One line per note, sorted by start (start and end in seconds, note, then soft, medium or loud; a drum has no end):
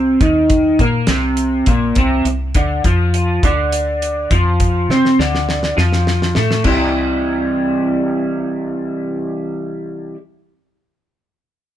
0.00 0.17 C2 medium
0.00 0.20 C3 medium
0.00 0.20 C4 medium
0.21 0.75 D#2 medium
0.21 0.78 D#3 medium
0.21 0.79 D#4 medium
0.21 kick medium
0.21 closed hi-hat medium
0.50 kick medium
0.50 closed hi-hat medium
0.79 1.06 A#2 medium
0.79 1.08 A#3 medium
0.79 1.08 A#4 medium
0.79 kick medium
0.79 closed hi-hat soft
1.07 1.63 C2 medium
1.07 1.66 C3 medium
1.07 1.67 C4 medium
1.07 snare loud
1.07 closed hi-hat medium
1.37 closed hi-hat medium
1.66 1.94 A#1 medium
1.66 1.96 A#2 medium
1.66 1.96 A#3 medium
1.66 kick loud
1.66 closed hi-hat medium
1.95 2.23 C2 medium
1.95 2.25 C3 medium
1.95 2.25 C4 medium
1.95 kick medium
1.95 closed hi-hat medium
2.25 2.52 C2 medium
2.25 2.50 C3 medium
2.25 closed hi-hat soft
2.55 2.82 D2 medium
2.55 2.83 D3 medium
2.55 2.84 D4 medium
2.55 kick medium
2.55 closed hi-hat medium
2.84 3.39 F2 medium
2.84 3.42 F3 medium
2.84 3.42 F4 medium
2.84 kick medium
2.84 closed hi-hat medium
3.14 closed hi-hat medium
3.43 4.27 D2 medium
3.43 4.30 D3 medium
3.43 4.30 D4 medium
3.43 kick medium
3.43 closed hi-hat medium
3.72 closed hi-hat medium
4.02 closed hi-hat medium
4.31 4.85 F2 medium
4.31 4.89 F3 medium
4.31 4.89 F4 medium
4.31 kick medium
4.31 closed hi-hat medium
4.60 kick medium
4.60 closed hi-hat medium
4.89 5.16 C3 medium
4.89 5.18 C4 medium
4.89 5.18 C5 medium
4.89 snare soft
5.05 snare soft
5.19 5.73 D2 medium
5.19 5.76 D3 medium
5.19 5.76 D4 medium
5.19 snare medium
5.35 snare soft
5.49 snare medium
5.63 snare medium
5.77 6.32 F2 medium
5.77 6.34 F3 medium
5.77 6.35 F4 medium
5.77 snare medium
5.93 snare medium
6.07 snare medium
6.22 snare medium
6.35 6.63 A2 medium
6.35 6.64 A3 medium
6.35 6.64 A4 medium
6.35 snare medium
6.51 snare medium
6.64 10.03 C2 medium
6.64 10.14 C3 medium
6.64 10.15 E3 medium
6.64 10.17 G3 medium
6.64 10.17 E4 medium
6.64 10.18 G4 medium
6.64 kick medium
6.64 crash medium